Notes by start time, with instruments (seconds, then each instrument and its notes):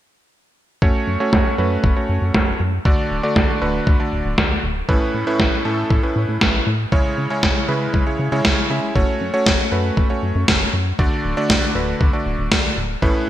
0.82 analog synth bass F#1, electric grand piano A3 C#4 F#4 C#5, kick
1.07 analog synth bass F#2
1.20 electric grand piano A3 C#4 F#4 C#5
1.33 analog synth bass F#1, kick, snare
1.58 analog synth bass F#2, electric grand piano A3 C#4 F#4 B4
1.84 analog synth bass F#1, kick
1.96 electric grand piano A3 C#4 F#4 C#5
2.09 analog synth bass F#2
2.22 analog synth bass F#2
2.34 analog synth bass F#1, electric grand piano A3 C#4 F#4 C#5, kick, snare
2.60 analog synth bass F#2
2.85 analog synth bass D2, electric grand piano D3 A3 D4 F#4 D5, kick
3.11 analog synth bass D1
3.23 electric grand piano D3 A3 D4 F#4 D5
3.36 analog synth bass D2, kick, snare
3.62 analog synth bass D1, electric grand piano D3 A3 D4 F#4 B4
3.87 analog synth bass D2, kick
4.00 electric grand piano D3 A3 D4 F#4 D5
4.12 analog synth bass D1
4.25 analog synth bass D1
4.38 analog synth bass D2, electric grand piano D3 A3 D4 F#4 D5, kick, snare
4.63 analog synth bass D1
4.89 analog synth bass A1, electric grand piano A2 A3 C#4 E4 B4, kick
5.14 analog synth bass A2
5.27 electric grand piano A2 A3 C#4 E4 B4
5.40 analog synth bass A1, kick, snare
5.65 analog synth bass A2, electric grand piano A2 A3 C#4 E4 A4
5.90 analog synth bass A1, kick
6.03 electric grand piano A2 A3 C#4 E4 B4
6.16 analog synth bass A2
6.29 analog synth bass A2
6.41 analog synth bass A1, electric grand piano A2 A3 C#4 E4 B4, kick, snare
6.67 analog synth bass A2
6.92 analog synth bass C#2, electric grand piano C#3 G#3 C#4 E4 C#5, kick
7.18 analog synth bass C#3
7.30 electric grand piano C#3 G#3 C#4 E4 C#5
7.43 analog synth bass C#2, kick, snare
7.68 electric grand piano C#3 G#3 C#4 E4 B4, analog synth bass C#3
7.94 analog synth bass C#2, kick
8.07 electric grand piano C#3 G#3 C#4 E4 C#5
8.19 analog synth bass C#3
8.32 analog synth bass C#3, electric grand piano C#3 G#3 C#4 E4 C#5
8.45 analog synth bass C#2, kick, snare
8.70 analog synth bass C#3, electric grand piano G#3 C#4 E4 E5
8.96 analog synth bass F#1, electric grand piano A3 C#4 F#4 C#5, kick
9.21 analog synth bass F#2
9.34 electric grand piano A3 C#4 F#4 C#5
9.46 analog synth bass F#1, kick, snare
9.72 analog synth bass F#2, electric grand piano A3 C#4 F#4 B4
9.97 analog synth bass F#1, kick
10.10 electric grand piano A3 C#4 F#4 C#5
10.23 analog synth bass F#2
10.35 analog synth bass F#2
10.48 analog synth bass F#1, electric grand piano A3 C#4 F#4 C#5, kick, snare
10.73 analog synth bass F#2
10.99 analog synth bass D2, electric grand piano D3 A3 D4 F#4 D5, kick
11.24 analog synth bass D1
11.37 electric grand piano D3 A3 D4 F#4 D5
11.50 analog synth bass D2, kick, snare
11.75 analog synth bass D1, electric grand piano D3 A3 D4 F#4 B4
12.01 analog synth bass D2, kick
12.13 electric grand piano D3 A3 D4 F#4 D5
12.26 analog synth bass D1
12.39 analog synth bass D1
12.51 analog synth bass D2, electric grand piano D3 A3 D4 F#4 D5, kick, snare
12.77 analog synth bass D1
13.02 analog synth bass A1, electric grand piano A2 A3 C#4 E4 B4, kick